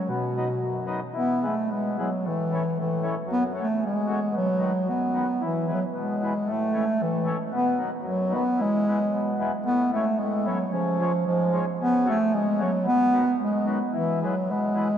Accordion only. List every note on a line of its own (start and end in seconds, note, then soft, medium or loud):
0.08 0.48 B2 medium
0.36 0.47 F#3 medium
0.36 0.48 B3 soft
0.36 0.48 D#4 medium
0.60 1.02 F#2 medium
0.86 0.99 F#3 medium
0.86 1.00 B3 medium
0.86 1.00 D#4 medium
1.13 1.40 E3 medium
1.41 1.54 E3 medium
1.41 1.55 G#3 medium
1.41 1.55 B3 medium
1.70 2.10 B2 medium
1.98 2.09 E3 medium
1.98 2.09 G#3 medium
1.98 2.10 B3 medium
2.23 2.63 A2 medium
2.51 2.63 E3 medium
2.51 2.63 A3 medium
2.51 2.64 C#4 medium
2.77 3.16 A2 medium
3.02 3.15 E3 medium
3.02 3.15 A3 medium
3.02 3.15 C#4 medium
3.26 3.67 F#2 medium
3.53 3.66 F#3 medium
3.53 3.67 A3 medium
3.53 3.68 C#4 medium
3.79 4.19 C#3 medium
4.07 4.19 F#3 medium
4.07 4.20 A3 medium
4.07 4.20 C#4 medium
4.32 4.73 B2 medium
4.58 4.71 D#3 medium
4.58 4.72 F#3 soft
4.58 4.72 B3 medium
4.84 5.26 F#2 medium
5.14 5.26 D#3 medium
5.14 5.27 F#3 soft
5.14 5.27 B3 medium
5.41 5.66 E3 medium
5.67 5.79 E3 medium
5.67 5.80 G#3 soft
5.67 5.80 B3 medium
5.93 6.33 B2 medium
6.22 6.33 E3 medium
6.22 6.34 G#3 medium
6.22 6.34 B3 medium
6.46 6.86 A2 medium
6.72 6.84 E3 medium
6.72 6.84 A3 medium
6.72 6.85 C#4 medium
6.98 7.38 A2 medium
7.24 7.36 E3 medium
7.24 7.37 A3 medium
7.24 7.38 C#4 medium
7.51 7.91 B2 medium
7.78 7.90 D#3 medium
7.78 7.90 F#3 medium
7.78 7.91 B3 medium
8.01 8.43 F#2 medium
8.30 8.43 D#3 medium
8.30 8.44 F#3 medium
8.30 8.43 B3 medium
8.57 8.85 E3 medium
8.86 8.98 E3 medium
8.86 8.98 G#3 soft
8.86 8.99 B3 medium
9.11 9.52 B2 medium
9.39 9.51 E3 medium
9.39 9.51 G#3 medium
9.39 9.52 B3 medium
9.64 10.05 A2 medium
9.92 10.05 E3 medium
9.92 10.05 A3 medium
9.92 10.06 C#4 medium
10.18 10.59 A2 medium
10.46 10.58 E3 medium
10.46 10.58 A3 medium
10.46 10.59 C#4 medium
10.72 11.12 C#3 medium
10.99 11.11 F3 medium
10.99 11.12 G#3 medium
10.99 11.12 C#4 medium
11.26 11.66 G#2 medium
11.52 11.64 F3 medium
11.52 11.65 G#3 medium
11.52 11.65 C#4 medium
11.80 12.19 C#3 medium
12.05 12.17 F#3 medium
12.05 12.18 A3 medium
12.05 12.18 C#4 medium
12.30 12.71 C#3 medium
12.58 12.70 F#3 medium
12.58 12.71 A3 medium
12.58 12.71 C#4 medium
12.83 13.25 B2 medium
13.13 13.25 D#3 medium
13.13 13.25 F#3 medium
13.13 13.25 B3 medium
13.38 13.80 F#2 medium
13.66 13.79 D#3 medium
13.66 13.79 F#3 medium
13.66 13.79 B3 medium
13.92 14.19 E3 medium
14.21 14.34 E3 medium
14.21 14.34 G#3 medium
14.21 14.35 B3 medium
14.49 14.90 B2 medium
14.75 14.88 E3 medium
14.75 14.88 G#3 medium
14.75 14.89 B3 medium